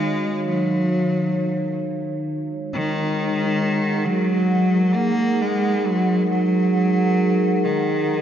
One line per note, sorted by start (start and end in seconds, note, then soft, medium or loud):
0.00 2.27 D#3 medium
0.00 0.48 G#3 medium
0.00 8.21 D#4 medium
0.00 4.16 F#4 medium
0.00 3.50 C#5 medium
0.00 2.26 F5 medium
0.49 1.79 F#3 medium
2.28 8.21 G#3 medium
2.73 4.07 D#3 medium
2.82 8.21 G#4 medium
3.18 8.21 A#4 medium
3.46 8.21 F#5 medium
4.05 4.97 F#3 medium
4.95 5.43 A#3 medium
5.42 5.88 G#3 medium
5.87 6.29 F#3 medium
6.30 7.66 F#3 medium
7.64 8.21 D#3 medium